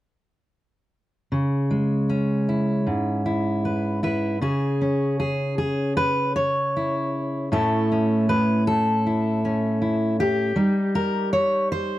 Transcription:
0, 0, Header, 1, 2, 480
1, 0, Start_track
1, 0, Key_signature, 4, "minor"
1, 0, Tempo, 787402
1, 805, Time_signature, 4, 2, 24, 8
1, 1280, Tempo, 773196
1, 4640, Tempo, 760456
1, 7465, End_track
2, 0, Start_track
2, 0, Title_t, "Steel-string acoustic guitar"
2, 0, Program_c, 0, 25
2, 803, Note_on_c, 0, 49, 58
2, 1040, Note_on_c, 0, 56, 46
2, 1277, Note_on_c, 0, 61, 47
2, 1520, Note_on_c, 0, 64, 42
2, 1753, Note_off_c, 0, 49, 0
2, 1756, Note_on_c, 0, 44, 52
2, 1991, Note_off_c, 0, 64, 0
2, 1998, Note_on_c, 0, 64, 47
2, 2243, Note_on_c, 0, 71, 49
2, 2472, Note_off_c, 0, 64, 0
2, 2474, Note_off_c, 0, 71, 0
2, 2478, Note_on_c, 0, 64, 51
2, 2483, Note_on_c, 0, 71, 61
2, 2685, Note_off_c, 0, 56, 0
2, 2686, Note_off_c, 0, 61, 0
2, 2690, Note_off_c, 0, 64, 0
2, 2717, Note_off_c, 0, 44, 0
2, 2718, Note_on_c, 0, 49, 66
2, 2720, Note_off_c, 0, 71, 0
2, 2723, Note_on_c, 0, 68, 70
2, 2966, Note_on_c, 0, 61, 36
2, 3195, Note_off_c, 0, 68, 0
2, 3203, Note_on_c, 0, 68, 68
2, 3434, Note_off_c, 0, 68, 0
2, 3441, Note_on_c, 0, 68, 73
2, 3679, Note_off_c, 0, 68, 0
2, 3682, Note_on_c, 0, 71, 87
2, 3921, Note_off_c, 0, 71, 0
2, 3924, Note_on_c, 0, 73, 83
2, 4177, Note_on_c, 0, 64, 46
2, 4620, Note_off_c, 0, 64, 0
2, 4642, Note_off_c, 0, 49, 0
2, 4642, Note_off_c, 0, 73, 0
2, 4643, Note_on_c, 0, 45, 65
2, 4646, Note_on_c, 0, 57, 46
2, 4648, Note_off_c, 0, 61, 0
2, 4650, Note_on_c, 0, 69, 78
2, 4651, Note_on_c, 0, 61, 46
2, 4655, Note_on_c, 0, 64, 45
2, 4892, Note_off_c, 0, 61, 0
2, 4895, Note_on_c, 0, 61, 40
2, 5128, Note_off_c, 0, 69, 0
2, 5132, Note_on_c, 0, 71, 80
2, 5370, Note_off_c, 0, 71, 0
2, 5372, Note_on_c, 0, 69, 80
2, 5612, Note_off_c, 0, 64, 0
2, 5620, Note_on_c, 0, 64, 39
2, 5854, Note_off_c, 0, 61, 0
2, 5862, Note_on_c, 0, 61, 41
2, 6086, Note_off_c, 0, 64, 0
2, 6094, Note_on_c, 0, 64, 41
2, 6329, Note_off_c, 0, 64, 0
2, 6336, Note_on_c, 0, 67, 81
2, 6537, Note_off_c, 0, 45, 0
2, 6538, Note_off_c, 0, 57, 0
2, 6543, Note_off_c, 0, 61, 0
2, 6562, Note_on_c, 0, 55, 71
2, 6567, Note_off_c, 0, 69, 0
2, 6567, Note_on_c, 0, 63, 48
2, 6811, Note_on_c, 0, 70, 82
2, 7046, Note_off_c, 0, 70, 0
2, 7048, Note_on_c, 0, 73, 97
2, 7285, Note_off_c, 0, 73, 0
2, 7287, Note_off_c, 0, 67, 0
2, 7295, Note_on_c, 0, 72, 88
2, 7465, Note_off_c, 0, 55, 0
2, 7465, Note_off_c, 0, 63, 0
2, 7465, Note_off_c, 0, 72, 0
2, 7465, End_track
0, 0, End_of_file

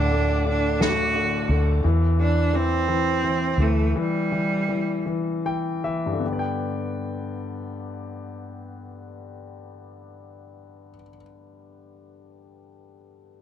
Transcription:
0, 0, Header, 1, 6, 480
1, 0, Start_track
1, 0, Key_signature, 1, "major"
1, 0, Tempo, 692042
1, 1275, Time_signature, 6, 3, 24, 8
1, 2241, Tempo, 736196
1, 3681, Tempo, 803213
1, 8449, End_track
2, 0, Start_track
2, 0, Title_t, "String section"
2, 0, Program_c, 0, 48
2, 0, Note_on_c, 0, 69, 76
2, 0, Note_on_c, 0, 78, 66
2, 0, Note_on_c, 0, 86, 84
2, 1244, Note_off_c, 0, 69, 0
2, 1245, Note_off_c, 0, 78, 0
2, 1245, Note_off_c, 0, 86, 0
2, 8449, End_track
3, 0, Start_track
3, 0, Title_t, "Cello"
3, 0, Program_c, 1, 42
3, 0, Note_on_c, 1, 62, 112
3, 330, Note_off_c, 1, 62, 0
3, 342, Note_on_c, 1, 62, 104
3, 568, Note_on_c, 1, 66, 110
3, 578, Note_off_c, 1, 62, 0
3, 1101, Note_off_c, 1, 66, 0
3, 1532, Note_on_c, 1, 62, 94
3, 1772, Note_on_c, 1, 60, 115
3, 1782, Note_off_c, 1, 62, 0
3, 2494, Note_on_c, 1, 57, 94
3, 2504, Note_off_c, 1, 60, 0
3, 2726, Note_on_c, 1, 55, 95
3, 2736, Note_off_c, 1, 57, 0
3, 3690, Note_off_c, 1, 55, 0
3, 8449, End_track
4, 0, Start_track
4, 0, Title_t, "Grand piano"
4, 0, Program_c, 2, 0
4, 0, Control_c, 2, 64, 127
4, 0, Note_on_c, 2, 45, 69
4, 0, Note_on_c, 2, 50, 62
4, 0, Note_on_c, 2, 57, 58
4, 79, Note_off_c, 2, 57, 0
4, 79, Note_on_c, 2, 57, 57
4, 291, Note_off_c, 2, 50, 0
4, 317, Note_on_c, 2, 50, 56
4, 545, Note_off_c, 2, 57, 0
4, 556, Note_on_c, 2, 57, 61
4, 786, Note_off_c, 2, 50, 0
4, 797, Note_on_c, 2, 50, 66
4, 1028, Note_off_c, 2, 57, 0
4, 1039, Note_on_c, 2, 57, 61
4, 1245, Note_off_c, 2, 45, 0
4, 1260, Note_off_c, 2, 50, 0
4, 1269, Note_off_c, 2, 57, 0
4, 1278, Note_on_c, 2, 52, 74
4, 1282, Control_c, 2, 64, 0
4, 1390, Control_c, 2, 64, 127
4, 1512, Note_off_c, 2, 52, 0
4, 1523, Note_on_c, 2, 52, 58
4, 1750, Note_off_c, 2, 52, 0
4, 1760, Note_on_c, 2, 52, 62
4, 1989, Note_off_c, 2, 52, 0
4, 1999, Note_on_c, 2, 52, 62
4, 2237, Note_off_c, 2, 52, 0
4, 2247, Note_on_c, 2, 52, 61
4, 2473, Note_off_c, 2, 52, 0
4, 2482, Note_on_c, 2, 52, 63
4, 2705, Note_off_c, 2, 52, 0
4, 2715, Note_on_c, 2, 52, 72
4, 2941, Note_off_c, 2, 52, 0
4, 2951, Note_on_c, 2, 52, 59
4, 3180, Note_off_c, 2, 52, 0
4, 3190, Note_on_c, 2, 52, 56
4, 3425, Note_off_c, 2, 52, 0
4, 3434, Note_on_c, 2, 52, 58
4, 3682, Note_off_c, 2, 52, 0
4, 3691, Note_on_c, 2, 52, 61
4, 3693, Note_on_c, 2, 79, 74
4, 3905, Note_off_c, 2, 79, 0
4, 3911, Note_off_c, 2, 52, 0
4, 3920, Note_on_c, 2, 52, 63
4, 3921, Note_on_c, 2, 76, 72
4, 4052, Note_on_c, 2, 43, 58
4, 4091, Note_on_c, 2, 50, 50
4, 4133, Note_on_c, 2, 59, 54
4, 4140, Note_off_c, 2, 76, 0
4, 4149, Note_off_c, 2, 52, 0
4, 4161, Control_c, 2, 64, 0
4, 4170, Note_on_c, 2, 67, 58
4, 4211, Note_on_c, 2, 74, 58
4, 4249, Control_c, 2, 64, 127
4, 4250, Note_on_c, 2, 79, 68
4, 6936, Note_off_c, 2, 43, 0
4, 6975, Note_off_c, 2, 50, 0
4, 7017, Note_off_c, 2, 59, 0
4, 7054, Note_off_c, 2, 67, 0
4, 7095, Note_off_c, 2, 74, 0
4, 7134, Note_off_c, 2, 79, 0
4, 8449, End_track
5, 0, Start_track
5, 0, Title_t, "Fingered electric bass"
5, 0, Program_c, 3, 33
5, 0, Note_on_c, 3, 38, 112
5, 1007, Note_off_c, 3, 38, 0
5, 1036, Note_on_c, 3, 38, 102
5, 1261, Note_off_c, 3, 38, 0
5, 1281, Note_on_c, 3, 40, 104
5, 2450, Note_off_c, 3, 40, 0
5, 2468, Note_on_c, 3, 38, 98
5, 2691, Note_off_c, 3, 38, 0
5, 8449, End_track
6, 0, Start_track
6, 0, Title_t, "Drums"
6, 80, Note_on_c, 9, 51, 44
6, 150, Note_off_c, 9, 51, 0
6, 311, Note_on_c, 9, 51, 42
6, 381, Note_off_c, 9, 51, 0
6, 553, Note_on_c, 9, 51, 77
6, 561, Note_on_c, 9, 38, 109
6, 623, Note_off_c, 9, 51, 0
6, 630, Note_off_c, 9, 38, 0
6, 791, Note_on_c, 9, 51, 46
6, 861, Note_off_c, 9, 51, 0
6, 1036, Note_on_c, 9, 51, 41
6, 1105, Note_off_c, 9, 51, 0
6, 8449, End_track
0, 0, End_of_file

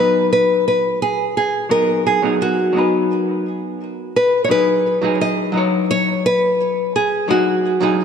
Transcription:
0, 0, Header, 1, 3, 480
1, 0, Start_track
1, 0, Key_signature, 5, "minor"
1, 0, Tempo, 697674
1, 1178, Time_signature, 4, 2, 24, 8
1, 5535, End_track
2, 0, Start_track
2, 0, Title_t, "Nylon-string guitar"
2, 0, Program_c, 0, 24
2, 0, Note_on_c, 0, 71, 78
2, 205, Note_off_c, 0, 71, 0
2, 224, Note_on_c, 0, 71, 81
2, 444, Note_off_c, 0, 71, 0
2, 466, Note_on_c, 0, 71, 83
2, 700, Note_off_c, 0, 71, 0
2, 703, Note_on_c, 0, 68, 79
2, 935, Note_off_c, 0, 68, 0
2, 943, Note_on_c, 0, 68, 72
2, 1175, Note_off_c, 0, 68, 0
2, 1178, Note_on_c, 0, 70, 91
2, 1418, Note_off_c, 0, 70, 0
2, 1421, Note_on_c, 0, 68, 82
2, 1664, Note_on_c, 0, 66, 80
2, 1666, Note_off_c, 0, 68, 0
2, 2833, Note_off_c, 0, 66, 0
2, 2865, Note_on_c, 0, 71, 84
2, 3041, Note_off_c, 0, 71, 0
2, 3058, Note_on_c, 0, 73, 73
2, 3101, Note_off_c, 0, 73, 0
2, 3104, Note_on_c, 0, 71, 101
2, 3584, Note_off_c, 0, 71, 0
2, 3587, Note_on_c, 0, 75, 98
2, 4061, Note_off_c, 0, 75, 0
2, 4063, Note_on_c, 0, 73, 99
2, 4303, Note_off_c, 0, 73, 0
2, 4306, Note_on_c, 0, 71, 102
2, 4754, Note_off_c, 0, 71, 0
2, 4786, Note_on_c, 0, 68, 82
2, 5024, Note_off_c, 0, 68, 0
2, 5026, Note_on_c, 0, 66, 81
2, 5535, Note_off_c, 0, 66, 0
2, 5535, End_track
3, 0, Start_track
3, 0, Title_t, "Hollow-body jazz guitar"
3, 0, Program_c, 1, 26
3, 0, Note_on_c, 1, 54, 74
3, 0, Note_on_c, 1, 59, 67
3, 0, Note_on_c, 1, 63, 63
3, 0, Note_on_c, 1, 71, 72
3, 1139, Note_off_c, 1, 54, 0
3, 1145, Note_off_c, 1, 59, 0
3, 1152, Note_off_c, 1, 63, 0
3, 1158, Note_off_c, 1, 71, 0
3, 1165, Note_on_c, 1, 54, 68
3, 1171, Note_on_c, 1, 59, 61
3, 1179, Note_on_c, 1, 63, 63
3, 1185, Note_on_c, 1, 68, 76
3, 1506, Note_off_c, 1, 54, 0
3, 1509, Note_off_c, 1, 59, 0
3, 1513, Note_off_c, 1, 63, 0
3, 1516, Note_off_c, 1, 68, 0
3, 1530, Note_on_c, 1, 54, 74
3, 1536, Note_on_c, 1, 59, 70
3, 1542, Note_on_c, 1, 63, 73
3, 1549, Note_on_c, 1, 68, 80
3, 1864, Note_off_c, 1, 54, 0
3, 1867, Note_off_c, 1, 59, 0
3, 1870, Note_off_c, 1, 63, 0
3, 1873, Note_off_c, 1, 68, 0
3, 1877, Note_on_c, 1, 54, 69
3, 1889, Note_on_c, 1, 59, 67
3, 1902, Note_on_c, 1, 63, 67
3, 1915, Note_on_c, 1, 71, 81
3, 3059, Note_off_c, 1, 54, 0
3, 3066, Note_off_c, 1, 59, 0
3, 3072, Note_off_c, 1, 63, 0
3, 3079, Note_off_c, 1, 71, 0
3, 3085, Note_on_c, 1, 54, 70
3, 3092, Note_on_c, 1, 63, 63
3, 3098, Note_on_c, 1, 64, 63
3, 3104, Note_on_c, 1, 68, 78
3, 3426, Note_off_c, 1, 54, 0
3, 3429, Note_off_c, 1, 63, 0
3, 3432, Note_off_c, 1, 64, 0
3, 3435, Note_off_c, 1, 68, 0
3, 3451, Note_on_c, 1, 54, 80
3, 3457, Note_on_c, 1, 63, 71
3, 3463, Note_on_c, 1, 64, 67
3, 3470, Note_on_c, 1, 68, 89
3, 3784, Note_off_c, 1, 54, 0
3, 3787, Note_off_c, 1, 63, 0
3, 3791, Note_off_c, 1, 64, 0
3, 3794, Note_off_c, 1, 68, 0
3, 3797, Note_on_c, 1, 54, 76
3, 3809, Note_on_c, 1, 63, 65
3, 3822, Note_on_c, 1, 64, 67
3, 3835, Note_on_c, 1, 73, 81
3, 4980, Note_off_c, 1, 54, 0
3, 4986, Note_off_c, 1, 63, 0
3, 4992, Note_off_c, 1, 64, 0
3, 4998, Note_off_c, 1, 73, 0
3, 5007, Note_on_c, 1, 54, 67
3, 5012, Note_on_c, 1, 63, 61
3, 5019, Note_on_c, 1, 64, 64
3, 5025, Note_on_c, 1, 68, 82
3, 5347, Note_off_c, 1, 54, 0
3, 5350, Note_off_c, 1, 63, 0
3, 5353, Note_off_c, 1, 64, 0
3, 5356, Note_off_c, 1, 68, 0
3, 5370, Note_on_c, 1, 54, 77
3, 5377, Note_on_c, 1, 63, 73
3, 5383, Note_on_c, 1, 64, 74
3, 5388, Note_on_c, 1, 68, 85
3, 5535, Note_off_c, 1, 54, 0
3, 5535, Note_off_c, 1, 63, 0
3, 5535, Note_off_c, 1, 64, 0
3, 5535, Note_off_c, 1, 68, 0
3, 5535, End_track
0, 0, End_of_file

